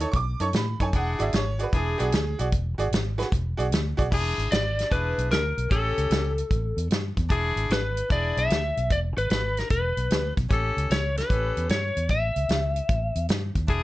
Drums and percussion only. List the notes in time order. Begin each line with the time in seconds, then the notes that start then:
0.00 closed hi-hat
0.13 kick, closed hi-hat
0.40 closed hi-hat
0.53 snare, closed hi-hat
0.80 kick, closed hi-hat
0.93 kick, closed hi-hat
1.20 closed hi-hat
1.33 snare, closed hi-hat
1.59 closed hi-hat
1.73 kick, closed hi-hat
2.00 closed hi-hat
2.12 snare, closed hi-hat
2.39 closed hi-hat
2.52 kick, closed hi-hat
2.79 closed hi-hat
2.92 snare, closed hi-hat
3.20 snare, closed hi-hat
3.32 kick, closed hi-hat
3.60 closed hi-hat
3.72 snare, closed hi-hat
3.99 kick, closed hi-hat
4.12 kick, crash
4.39 closed hi-hat
4.52 snare, closed hi-hat
4.79 snare, closed hi-hat
4.92 kick, closed hi-hat
5.19 closed hi-hat
5.31 snare, closed hi-hat
5.58 closed hi-hat
5.71 kick, closed hi-hat
5.98 closed hi-hat
6.11 snare, closed hi-hat
6.38 closed hi-hat
6.51 kick, closed hi-hat
6.78 closed hi-hat
6.91 snare, closed hi-hat
7.17 kick, closed hi-hat
7.30 kick, closed hi-hat
7.57 closed hi-hat
7.70 snare, closed hi-hat
7.97 closed hi-hat
8.10 kick, closed hi-hat
8.37 closed hi-hat
8.50 snare, closed hi-hat
8.77 closed hi-hat
8.90 kick, closed hi-hat
9.17 closed hi-hat
9.30 snare, closed hi-hat
9.57 snare, closed hi-hat
9.70 kick, closed hi-hat
9.97 closed hi-hat
10.10 snare, closed hi-hat
10.37 kick, closed hi-hat
10.51 kick, closed hi-hat
10.78 closed hi-hat
10.91 snare, closed hi-hat
11.17 snare, closed hi-hat
11.30 kick, closed hi-hat
11.57 closed hi-hat
11.69 snare, closed hi-hat
11.97 closed hi-hat
12.09 kick, closed hi-hat
12.36 closed hi-hat
12.49 snare, closed hi-hat
12.76 closed hi-hat
12.89 kick, closed hi-hat
13.15 closed hi-hat
13.29 snare, closed hi-hat
13.55 kick, closed hi-hat
13.68 kick, closed hi-hat